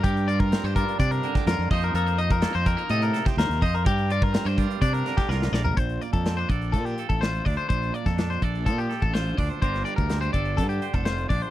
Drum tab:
HH |xxx-xxxxxxxxx-ox|xxxxxxxxxxxxxxox|xxx-xxxxxxxx----|xxxxxxxxxxxxxxox|
SD |----o------oo---|----o-----oooo--|----o-----ooooo-|----o-------o---|
FT |----------------|----------------|---------------o|----------------|
BD |o--o--o-o--o--o-|---o--o----o--o-|o--o--o-o--o----|o--o--o-o--o--o-|

HH |xxxxxxxxxxxxxxox|xxxxxxxxxxxxxxox|
SD |---oo-----o-o---|-o--o-------o---|
FT |----------------|----------------|
BD |o--o--o-o--o--o-|o--o--o-o--o--o-|